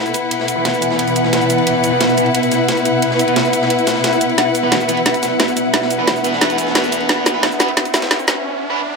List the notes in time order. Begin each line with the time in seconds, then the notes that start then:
Already playing: B2 B3 E4 B4 E5 F#5
0.06 ride, cabasa
0.14 closed hi-hat, ride, cabasa
0.31 closed hi-hat, ride
0.40 snare
0.48 closed hi-hat, ride, cabasa
0.56 E3 B3 B4
0.65 snare, closed hi-hat, ride
0.74 cabasa
0.82 E3 B3 B4, closed hi-hat, ride, cabasa
0.91 snare
0.99 closed hi-hat, ride
1.08 closed hi-hat, cabasa
1.16 closed hi-hat, ride, cabasa
1.24 snare
1.33 snare, closed hi-hat, ride
1.41 ride, cabasa
1.50 closed hi-hat, ride, cabasa
1.58 ride
1.67 closed hi-hat, ride
1.84 closed hi-hat, ride, cabasa
1.92 E3 B3 B4
2.01 snare, closed hi-hat, ride
2.09 cabasa
2.17 E3 B3 B4, closed hi-hat, ride, cabasa
2.26 ride
2.34 closed hi-hat, ride
2.43 closed hi-hat, ride, cabasa
2.52 snare, closed hi-hat, ride, cabasa
2.69 snare, closed hi-hat, ride
2.77 ride, cabasa
2.85 closed hi-hat, ride, cabasa
3.02 closed hi-hat, ride
3.11 snare
3.19 closed hi-hat, ride, cabasa
3.27 E3 B3 B4, closed hi-hat
3.36 snare, closed hi-hat, ride
3.45 cabasa
3.53 closed hi-hat, ride, cabasa
3.62 snare
3.70 closed hi-hat, ride
3.79 closed hi-hat, cabasa
3.87 snare, closed hi-hat, ride, cabasa
3.96 snare
4.04 snare, closed hi-hat, ride
4.12 ride, cabasa
4.21 closed hi-hat, ride, cabasa
4.29 ride
4.38 D4, snare, closed hi-hat, ride, riser
4.55 closed hi-hat, ride, cabasa
4.63 E3 B3 B4
4.72 snare, closed hi-hat, ride
4.80 cabasa
4.88 E3 B3 B4, closed hi-hat, ride, cabasa
4.97 ride
5.06 snare, closed hi-hat, ride
5.14 closed hi-hat, ride, cabasa
5.23 snare, closed hi-hat, ride, cabasa
5.40 snare, closed hi-hat, ride
5.48 ride, cabasa
5.56 closed hi-hat, ride, cabasa
5.74 snare, closed hi-hat, ride
5.82 snare
5.90 closed hi-hat, ride, cabasa
5.99 E3 B3 B4
6.07 snare, closed hi-hat, ride
6.16 cabasa
6.24 E3 B3 B4, closed hi-hat, ride, cabasa
6.33 snare
6.41 snare, closed hi-hat, ride
6.50 closed hi-hat, cabasa
6.58 closed hi-hat, ride, cabasa
6.67 snare
6.75 snare, closed hi-hat, ride
6.84 ride, cabasa
6.92 closed hi-hat, ride, cabasa
7.01 ride
7.09 snare, closed hi-hat, ride
7.26 snare, closed hi-hat, ride, cabasa
7.34 E3 B3 B4
7.43 snare, closed hi-hat, ride
7.52 cabasa
7.60 E3 B3 B4, snare, closed hi-hat, ride, cabasa
7.68 ride
7.77 snare, closed hi-hat, ride
7.85 closed hi-hat, ride, cabasa
7.94 snare, closed hi-hat, ride, cabasa
8.02 snare, ride
8.11 snare, closed hi-hat, ride
8.19 ride, cabasa
8.28 snare, closed hi-hat, ride, cabasa
8.70 E3 B3 B4